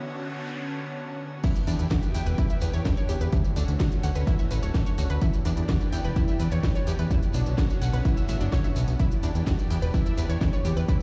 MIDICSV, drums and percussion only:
0, 0, Header, 1, 3, 480
1, 0, Start_track
1, 0, Tempo, 472441
1, 1460, Time_signature, 4, 2, 24, 8
1, 11199, End_track
2, 0, Start_track
2, 0, Title_t, "Shekere"
2, 1458, Note_on_c, 9, 82, 54
2, 1560, Note_off_c, 9, 82, 0
2, 1585, Note_on_c, 9, 82, 34
2, 1686, Note_off_c, 9, 82, 0
2, 1703, Note_on_c, 9, 82, 91
2, 1804, Note_off_c, 9, 82, 0
2, 1825, Note_on_c, 9, 82, 42
2, 1926, Note_off_c, 9, 82, 0
2, 1935, Note_on_c, 9, 82, 51
2, 2036, Note_off_c, 9, 82, 0
2, 2059, Note_on_c, 9, 82, 37
2, 2161, Note_off_c, 9, 82, 0
2, 2181, Note_on_c, 9, 82, 84
2, 2282, Note_off_c, 9, 82, 0
2, 2300, Note_on_c, 9, 82, 37
2, 2402, Note_off_c, 9, 82, 0
2, 2422, Note_on_c, 9, 82, 54
2, 2523, Note_off_c, 9, 82, 0
2, 2534, Note_on_c, 9, 82, 35
2, 2636, Note_off_c, 9, 82, 0
2, 2651, Note_on_c, 9, 82, 95
2, 2753, Note_off_c, 9, 82, 0
2, 2784, Note_on_c, 9, 82, 44
2, 2885, Note_off_c, 9, 82, 0
2, 2900, Note_on_c, 9, 82, 53
2, 3002, Note_off_c, 9, 82, 0
2, 3024, Note_on_c, 9, 82, 35
2, 3125, Note_off_c, 9, 82, 0
2, 3140, Note_on_c, 9, 82, 90
2, 3241, Note_off_c, 9, 82, 0
2, 3258, Note_on_c, 9, 82, 36
2, 3360, Note_off_c, 9, 82, 0
2, 3379, Note_on_c, 9, 82, 50
2, 3480, Note_off_c, 9, 82, 0
2, 3502, Note_on_c, 9, 82, 35
2, 3603, Note_off_c, 9, 82, 0
2, 3625, Note_on_c, 9, 82, 105
2, 3726, Note_off_c, 9, 82, 0
2, 3748, Note_on_c, 9, 82, 38
2, 3850, Note_off_c, 9, 82, 0
2, 3863, Note_on_c, 9, 82, 55
2, 3965, Note_off_c, 9, 82, 0
2, 3978, Note_on_c, 9, 82, 36
2, 4080, Note_off_c, 9, 82, 0
2, 4099, Note_on_c, 9, 82, 102
2, 4201, Note_off_c, 9, 82, 0
2, 4216, Note_on_c, 9, 82, 45
2, 4318, Note_off_c, 9, 82, 0
2, 4342, Note_on_c, 9, 82, 56
2, 4444, Note_off_c, 9, 82, 0
2, 4461, Note_on_c, 9, 82, 40
2, 4562, Note_off_c, 9, 82, 0
2, 4585, Note_on_c, 9, 82, 105
2, 4687, Note_off_c, 9, 82, 0
2, 4704, Note_on_c, 9, 82, 46
2, 4805, Note_off_c, 9, 82, 0
2, 4826, Note_on_c, 9, 82, 49
2, 4927, Note_off_c, 9, 82, 0
2, 4942, Note_on_c, 9, 82, 41
2, 5044, Note_off_c, 9, 82, 0
2, 5064, Note_on_c, 9, 82, 97
2, 5165, Note_off_c, 9, 82, 0
2, 5185, Note_on_c, 9, 82, 42
2, 5286, Note_off_c, 9, 82, 0
2, 5302, Note_on_c, 9, 82, 61
2, 5403, Note_off_c, 9, 82, 0
2, 5418, Note_on_c, 9, 82, 39
2, 5520, Note_off_c, 9, 82, 0
2, 5544, Note_on_c, 9, 82, 91
2, 5646, Note_off_c, 9, 82, 0
2, 5653, Note_on_c, 9, 82, 39
2, 5755, Note_off_c, 9, 82, 0
2, 5788, Note_on_c, 9, 82, 55
2, 5890, Note_off_c, 9, 82, 0
2, 5895, Note_on_c, 9, 82, 38
2, 5996, Note_off_c, 9, 82, 0
2, 6021, Note_on_c, 9, 82, 93
2, 6122, Note_off_c, 9, 82, 0
2, 6142, Note_on_c, 9, 82, 43
2, 6244, Note_off_c, 9, 82, 0
2, 6262, Note_on_c, 9, 82, 52
2, 6364, Note_off_c, 9, 82, 0
2, 6383, Note_on_c, 9, 82, 39
2, 6485, Note_off_c, 9, 82, 0
2, 6498, Note_on_c, 9, 82, 91
2, 6600, Note_off_c, 9, 82, 0
2, 6618, Note_on_c, 9, 82, 39
2, 6719, Note_off_c, 9, 82, 0
2, 6743, Note_on_c, 9, 82, 60
2, 6844, Note_off_c, 9, 82, 0
2, 6869, Note_on_c, 9, 82, 42
2, 6971, Note_off_c, 9, 82, 0
2, 6983, Note_on_c, 9, 82, 97
2, 7085, Note_off_c, 9, 82, 0
2, 7105, Note_on_c, 9, 82, 42
2, 7206, Note_off_c, 9, 82, 0
2, 7220, Note_on_c, 9, 82, 57
2, 7322, Note_off_c, 9, 82, 0
2, 7340, Note_on_c, 9, 82, 36
2, 7442, Note_off_c, 9, 82, 0
2, 7450, Note_on_c, 9, 82, 106
2, 7552, Note_off_c, 9, 82, 0
2, 7582, Note_on_c, 9, 82, 39
2, 7683, Note_off_c, 9, 82, 0
2, 7706, Note_on_c, 9, 82, 52
2, 7808, Note_off_c, 9, 82, 0
2, 7824, Note_on_c, 9, 82, 39
2, 7926, Note_off_c, 9, 82, 0
2, 7950, Note_on_c, 9, 82, 95
2, 8052, Note_off_c, 9, 82, 0
2, 8063, Note_on_c, 9, 82, 44
2, 8165, Note_off_c, 9, 82, 0
2, 8182, Note_on_c, 9, 82, 50
2, 8284, Note_off_c, 9, 82, 0
2, 8296, Note_on_c, 9, 82, 37
2, 8398, Note_off_c, 9, 82, 0
2, 8417, Note_on_c, 9, 82, 101
2, 8519, Note_off_c, 9, 82, 0
2, 8537, Note_on_c, 9, 82, 44
2, 8639, Note_off_c, 9, 82, 0
2, 8659, Note_on_c, 9, 82, 57
2, 8761, Note_off_c, 9, 82, 0
2, 8781, Note_on_c, 9, 82, 36
2, 8882, Note_off_c, 9, 82, 0
2, 8898, Note_on_c, 9, 82, 98
2, 9000, Note_off_c, 9, 82, 0
2, 9029, Note_on_c, 9, 82, 39
2, 9131, Note_off_c, 9, 82, 0
2, 9138, Note_on_c, 9, 82, 51
2, 9240, Note_off_c, 9, 82, 0
2, 9254, Note_on_c, 9, 82, 34
2, 9356, Note_off_c, 9, 82, 0
2, 9377, Note_on_c, 9, 82, 93
2, 9479, Note_off_c, 9, 82, 0
2, 9501, Note_on_c, 9, 82, 44
2, 9603, Note_off_c, 9, 82, 0
2, 9614, Note_on_c, 9, 82, 56
2, 9715, Note_off_c, 9, 82, 0
2, 9746, Note_on_c, 9, 82, 39
2, 9848, Note_off_c, 9, 82, 0
2, 9864, Note_on_c, 9, 82, 84
2, 9966, Note_off_c, 9, 82, 0
2, 9977, Note_on_c, 9, 82, 40
2, 10078, Note_off_c, 9, 82, 0
2, 10101, Note_on_c, 9, 82, 59
2, 10203, Note_off_c, 9, 82, 0
2, 10225, Note_on_c, 9, 82, 41
2, 10326, Note_off_c, 9, 82, 0
2, 10338, Note_on_c, 9, 82, 90
2, 10440, Note_off_c, 9, 82, 0
2, 10459, Note_on_c, 9, 82, 38
2, 10561, Note_off_c, 9, 82, 0
2, 10573, Note_on_c, 9, 82, 52
2, 10675, Note_off_c, 9, 82, 0
2, 10699, Note_on_c, 9, 82, 32
2, 10800, Note_off_c, 9, 82, 0
2, 10819, Note_on_c, 9, 82, 86
2, 10921, Note_off_c, 9, 82, 0
2, 10948, Note_on_c, 9, 82, 38
2, 11050, Note_off_c, 9, 82, 0
2, 11059, Note_on_c, 9, 82, 54
2, 11161, Note_off_c, 9, 82, 0
2, 11199, End_track
3, 0, Start_track
3, 0, Title_t, "Drums"
3, 1460, Note_on_c, 9, 36, 118
3, 1460, Note_on_c, 9, 42, 66
3, 1460, Note_on_c, 9, 49, 101
3, 1561, Note_off_c, 9, 42, 0
3, 1561, Note_off_c, 9, 49, 0
3, 1562, Note_off_c, 9, 36, 0
3, 1581, Note_on_c, 9, 42, 46
3, 1682, Note_off_c, 9, 42, 0
3, 1699, Note_on_c, 9, 46, 104
3, 1800, Note_off_c, 9, 46, 0
3, 1820, Note_on_c, 9, 42, 46
3, 1922, Note_off_c, 9, 42, 0
3, 1939, Note_on_c, 9, 38, 127
3, 1939, Note_on_c, 9, 42, 72
3, 1940, Note_on_c, 9, 36, 125
3, 2041, Note_off_c, 9, 38, 0
3, 2041, Note_off_c, 9, 42, 0
3, 2042, Note_off_c, 9, 36, 0
3, 2059, Note_on_c, 9, 42, 47
3, 2161, Note_off_c, 9, 42, 0
3, 2179, Note_on_c, 9, 46, 106
3, 2281, Note_off_c, 9, 46, 0
3, 2299, Note_on_c, 9, 42, 45
3, 2401, Note_off_c, 9, 42, 0
3, 2419, Note_on_c, 9, 42, 54
3, 2420, Note_on_c, 9, 36, 124
3, 2521, Note_off_c, 9, 36, 0
3, 2521, Note_off_c, 9, 42, 0
3, 2539, Note_on_c, 9, 42, 48
3, 2640, Note_off_c, 9, 42, 0
3, 2658, Note_on_c, 9, 46, 105
3, 2759, Note_off_c, 9, 46, 0
3, 2778, Note_on_c, 9, 42, 48
3, 2880, Note_off_c, 9, 42, 0
3, 2898, Note_on_c, 9, 38, 123
3, 2898, Note_on_c, 9, 42, 72
3, 2900, Note_on_c, 9, 36, 126
3, 3000, Note_off_c, 9, 38, 0
3, 3000, Note_off_c, 9, 42, 0
3, 3001, Note_off_c, 9, 36, 0
3, 3019, Note_on_c, 9, 42, 45
3, 3121, Note_off_c, 9, 42, 0
3, 3139, Note_on_c, 9, 46, 104
3, 3240, Note_off_c, 9, 46, 0
3, 3260, Note_on_c, 9, 42, 48
3, 3362, Note_off_c, 9, 42, 0
3, 3378, Note_on_c, 9, 42, 66
3, 3379, Note_on_c, 9, 36, 122
3, 3480, Note_off_c, 9, 42, 0
3, 3481, Note_off_c, 9, 36, 0
3, 3500, Note_on_c, 9, 42, 44
3, 3601, Note_off_c, 9, 42, 0
3, 3619, Note_on_c, 9, 46, 110
3, 3721, Note_off_c, 9, 46, 0
3, 3741, Note_on_c, 9, 42, 46
3, 3843, Note_off_c, 9, 42, 0
3, 3859, Note_on_c, 9, 38, 126
3, 3859, Note_on_c, 9, 42, 73
3, 3860, Note_on_c, 9, 36, 120
3, 3961, Note_off_c, 9, 36, 0
3, 3961, Note_off_c, 9, 38, 0
3, 3961, Note_off_c, 9, 42, 0
3, 3980, Note_on_c, 9, 42, 45
3, 4082, Note_off_c, 9, 42, 0
3, 4099, Note_on_c, 9, 46, 113
3, 4201, Note_off_c, 9, 46, 0
3, 4220, Note_on_c, 9, 42, 47
3, 4322, Note_off_c, 9, 42, 0
3, 4339, Note_on_c, 9, 42, 54
3, 4340, Note_on_c, 9, 36, 127
3, 4441, Note_off_c, 9, 36, 0
3, 4441, Note_off_c, 9, 42, 0
3, 4461, Note_on_c, 9, 42, 49
3, 4562, Note_off_c, 9, 42, 0
3, 4579, Note_on_c, 9, 46, 107
3, 4681, Note_off_c, 9, 46, 0
3, 4701, Note_on_c, 9, 42, 46
3, 4803, Note_off_c, 9, 42, 0
3, 4820, Note_on_c, 9, 36, 127
3, 4821, Note_on_c, 9, 38, 123
3, 4821, Note_on_c, 9, 42, 69
3, 4921, Note_off_c, 9, 36, 0
3, 4922, Note_off_c, 9, 38, 0
3, 4922, Note_off_c, 9, 42, 0
3, 4941, Note_on_c, 9, 42, 44
3, 5042, Note_off_c, 9, 42, 0
3, 5060, Note_on_c, 9, 46, 106
3, 5162, Note_off_c, 9, 46, 0
3, 5180, Note_on_c, 9, 42, 46
3, 5281, Note_off_c, 9, 42, 0
3, 5299, Note_on_c, 9, 42, 65
3, 5300, Note_on_c, 9, 36, 123
3, 5400, Note_off_c, 9, 42, 0
3, 5402, Note_off_c, 9, 36, 0
3, 5420, Note_on_c, 9, 42, 44
3, 5521, Note_off_c, 9, 42, 0
3, 5539, Note_on_c, 9, 46, 112
3, 5640, Note_off_c, 9, 46, 0
3, 5659, Note_on_c, 9, 42, 43
3, 5761, Note_off_c, 9, 42, 0
3, 5778, Note_on_c, 9, 38, 127
3, 5778, Note_on_c, 9, 42, 66
3, 5780, Note_on_c, 9, 36, 127
3, 5880, Note_off_c, 9, 38, 0
3, 5880, Note_off_c, 9, 42, 0
3, 5882, Note_off_c, 9, 36, 0
3, 5900, Note_on_c, 9, 42, 41
3, 6002, Note_off_c, 9, 42, 0
3, 6020, Note_on_c, 9, 46, 113
3, 6122, Note_off_c, 9, 46, 0
3, 6141, Note_on_c, 9, 42, 45
3, 6243, Note_off_c, 9, 42, 0
3, 6260, Note_on_c, 9, 36, 127
3, 6260, Note_on_c, 9, 42, 50
3, 6361, Note_off_c, 9, 42, 0
3, 6362, Note_off_c, 9, 36, 0
3, 6380, Note_on_c, 9, 42, 46
3, 6482, Note_off_c, 9, 42, 0
3, 6499, Note_on_c, 9, 46, 110
3, 6601, Note_off_c, 9, 46, 0
3, 6620, Note_on_c, 9, 42, 45
3, 6722, Note_off_c, 9, 42, 0
3, 6740, Note_on_c, 9, 36, 126
3, 6740, Note_on_c, 9, 38, 123
3, 6740, Note_on_c, 9, 42, 64
3, 6842, Note_off_c, 9, 36, 0
3, 6842, Note_off_c, 9, 38, 0
3, 6842, Note_off_c, 9, 42, 0
3, 6861, Note_on_c, 9, 42, 42
3, 6963, Note_off_c, 9, 42, 0
3, 6980, Note_on_c, 9, 46, 111
3, 7081, Note_off_c, 9, 46, 0
3, 7101, Note_on_c, 9, 42, 44
3, 7203, Note_off_c, 9, 42, 0
3, 7220, Note_on_c, 9, 36, 123
3, 7221, Note_on_c, 9, 42, 63
3, 7322, Note_off_c, 9, 36, 0
3, 7323, Note_off_c, 9, 42, 0
3, 7342, Note_on_c, 9, 42, 44
3, 7443, Note_off_c, 9, 42, 0
3, 7461, Note_on_c, 9, 46, 109
3, 7563, Note_off_c, 9, 46, 0
3, 7582, Note_on_c, 9, 42, 42
3, 7683, Note_off_c, 9, 42, 0
3, 7700, Note_on_c, 9, 36, 127
3, 7701, Note_on_c, 9, 38, 125
3, 7701, Note_on_c, 9, 42, 64
3, 7802, Note_off_c, 9, 36, 0
3, 7803, Note_off_c, 9, 38, 0
3, 7803, Note_off_c, 9, 42, 0
3, 7823, Note_on_c, 9, 42, 43
3, 7925, Note_off_c, 9, 42, 0
3, 7941, Note_on_c, 9, 46, 106
3, 8043, Note_off_c, 9, 46, 0
3, 8062, Note_on_c, 9, 42, 43
3, 8163, Note_off_c, 9, 42, 0
3, 8180, Note_on_c, 9, 36, 127
3, 8181, Note_on_c, 9, 42, 50
3, 8282, Note_off_c, 9, 36, 0
3, 8283, Note_off_c, 9, 42, 0
3, 8302, Note_on_c, 9, 42, 46
3, 8403, Note_off_c, 9, 42, 0
3, 8421, Note_on_c, 9, 46, 107
3, 8523, Note_off_c, 9, 46, 0
3, 8542, Note_on_c, 9, 42, 43
3, 8644, Note_off_c, 9, 42, 0
3, 8660, Note_on_c, 9, 36, 127
3, 8660, Note_on_c, 9, 38, 121
3, 8660, Note_on_c, 9, 42, 64
3, 8762, Note_off_c, 9, 36, 0
3, 8762, Note_off_c, 9, 38, 0
3, 8762, Note_off_c, 9, 42, 0
3, 8782, Note_on_c, 9, 42, 42
3, 8883, Note_off_c, 9, 42, 0
3, 8900, Note_on_c, 9, 46, 107
3, 9001, Note_off_c, 9, 46, 0
3, 9020, Note_on_c, 9, 42, 44
3, 9122, Note_off_c, 9, 42, 0
3, 9139, Note_on_c, 9, 42, 61
3, 9140, Note_on_c, 9, 36, 119
3, 9240, Note_off_c, 9, 42, 0
3, 9241, Note_off_c, 9, 36, 0
3, 9261, Note_on_c, 9, 42, 44
3, 9363, Note_off_c, 9, 42, 0
3, 9380, Note_on_c, 9, 46, 107
3, 9481, Note_off_c, 9, 46, 0
3, 9501, Note_on_c, 9, 42, 42
3, 9603, Note_off_c, 9, 42, 0
3, 9620, Note_on_c, 9, 36, 116
3, 9621, Note_on_c, 9, 38, 118
3, 9621, Note_on_c, 9, 42, 67
3, 9721, Note_off_c, 9, 36, 0
3, 9723, Note_off_c, 9, 38, 0
3, 9723, Note_off_c, 9, 42, 0
3, 9742, Note_on_c, 9, 42, 40
3, 9843, Note_off_c, 9, 42, 0
3, 9861, Note_on_c, 9, 46, 106
3, 9962, Note_off_c, 9, 46, 0
3, 9981, Note_on_c, 9, 42, 43
3, 10083, Note_off_c, 9, 42, 0
3, 10099, Note_on_c, 9, 36, 120
3, 10100, Note_on_c, 9, 42, 50
3, 10201, Note_off_c, 9, 36, 0
3, 10202, Note_off_c, 9, 42, 0
3, 10220, Note_on_c, 9, 42, 44
3, 10322, Note_off_c, 9, 42, 0
3, 10340, Note_on_c, 9, 46, 111
3, 10441, Note_off_c, 9, 46, 0
3, 10461, Note_on_c, 9, 42, 44
3, 10562, Note_off_c, 9, 42, 0
3, 10579, Note_on_c, 9, 36, 123
3, 10581, Note_on_c, 9, 38, 114
3, 10581, Note_on_c, 9, 42, 66
3, 10681, Note_off_c, 9, 36, 0
3, 10682, Note_off_c, 9, 38, 0
3, 10682, Note_off_c, 9, 42, 0
3, 10700, Note_on_c, 9, 42, 41
3, 10802, Note_off_c, 9, 42, 0
3, 10819, Note_on_c, 9, 46, 107
3, 10921, Note_off_c, 9, 46, 0
3, 10941, Note_on_c, 9, 42, 44
3, 11043, Note_off_c, 9, 42, 0
3, 11059, Note_on_c, 9, 36, 119
3, 11061, Note_on_c, 9, 42, 64
3, 11161, Note_off_c, 9, 36, 0
3, 11162, Note_off_c, 9, 42, 0
3, 11199, End_track
0, 0, End_of_file